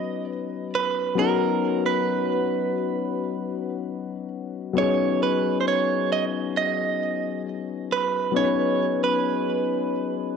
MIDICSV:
0, 0, Header, 1, 3, 480
1, 0, Start_track
1, 0, Key_signature, 5, "major"
1, 0, Tempo, 895522
1, 631, Time_signature, 4, 2, 24, 8
1, 5557, End_track
2, 0, Start_track
2, 0, Title_t, "Clean electric guitar"
2, 0, Program_c, 0, 27
2, 0, Note_on_c, 0, 75, 98
2, 134, Note_off_c, 0, 75, 0
2, 402, Note_on_c, 0, 71, 98
2, 636, Note_off_c, 0, 71, 0
2, 638, Note_on_c, 0, 70, 109
2, 996, Note_off_c, 0, 70, 0
2, 998, Note_on_c, 0, 71, 92
2, 2293, Note_off_c, 0, 71, 0
2, 2563, Note_on_c, 0, 73, 86
2, 2800, Note_off_c, 0, 73, 0
2, 2802, Note_on_c, 0, 71, 87
2, 3002, Note_off_c, 0, 71, 0
2, 3004, Note_on_c, 0, 72, 72
2, 3036, Note_off_c, 0, 72, 0
2, 3043, Note_on_c, 0, 73, 97
2, 3280, Note_off_c, 0, 73, 0
2, 3283, Note_on_c, 0, 75, 102
2, 3346, Note_off_c, 0, 75, 0
2, 3524, Note_on_c, 0, 75, 100
2, 3976, Note_off_c, 0, 75, 0
2, 4247, Note_on_c, 0, 71, 94
2, 4463, Note_off_c, 0, 71, 0
2, 4484, Note_on_c, 0, 73, 111
2, 4842, Note_off_c, 0, 73, 0
2, 4844, Note_on_c, 0, 71, 85
2, 5557, Note_off_c, 0, 71, 0
2, 5557, End_track
3, 0, Start_track
3, 0, Title_t, "Synth keys"
3, 0, Program_c, 1, 88
3, 0, Control_c, 1, 64, 127
3, 0, Note_on_c, 1, 54, 65
3, 0, Note_on_c, 1, 59, 60
3, 0, Note_on_c, 1, 61, 58
3, 0, Note_on_c, 1, 63, 58
3, 0, Note_on_c, 1, 71, 74
3, 602, Note_off_c, 1, 54, 0
3, 606, Note_off_c, 1, 59, 0
3, 610, Note_off_c, 1, 61, 0
3, 614, Note_off_c, 1, 63, 0
3, 617, Note_on_c, 1, 54, 68
3, 618, Note_off_c, 1, 71, 0
3, 625, Note_on_c, 1, 59, 66
3, 633, Note_on_c, 1, 61, 62
3, 641, Note_on_c, 1, 63, 59
3, 649, Note_on_c, 1, 66, 78
3, 2523, Note_off_c, 1, 54, 0
3, 2527, Note_off_c, 1, 59, 0
3, 2531, Note_off_c, 1, 61, 0
3, 2534, Note_off_c, 1, 63, 0
3, 2537, Note_on_c, 1, 54, 69
3, 2539, Note_off_c, 1, 66, 0
3, 2545, Note_on_c, 1, 59, 64
3, 2553, Note_on_c, 1, 61, 61
3, 2560, Note_on_c, 1, 63, 61
3, 2569, Note_on_c, 1, 68, 71
3, 4443, Note_off_c, 1, 54, 0
3, 4446, Note_off_c, 1, 59, 0
3, 4451, Note_off_c, 1, 61, 0
3, 4454, Note_off_c, 1, 63, 0
3, 4458, Note_off_c, 1, 68, 0
3, 4458, Note_on_c, 1, 54, 68
3, 4467, Note_on_c, 1, 59, 64
3, 4475, Note_on_c, 1, 61, 61
3, 4482, Note_on_c, 1, 63, 61
3, 4491, Note_on_c, 1, 68, 56
3, 4516, Note_off_c, 1, 68, 0
3, 4525, Note_on_c, 1, 71, 74
3, 5557, Note_off_c, 1, 54, 0
3, 5557, Note_off_c, 1, 59, 0
3, 5557, Note_off_c, 1, 61, 0
3, 5557, Note_off_c, 1, 63, 0
3, 5557, Note_off_c, 1, 71, 0
3, 5557, End_track
0, 0, End_of_file